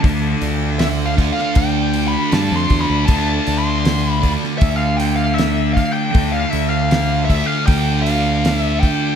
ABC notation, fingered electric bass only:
X:1
M:4/4
L:1/16
Q:1/4=79
K:Dm
V:1 name="Fingered electric bass" clef=bass
D,,2 D,,6 D,,4 G,, F,, E,, D,, | D,,2 D,,6 D,,8 | D,,2 D,,6 D,,8 |]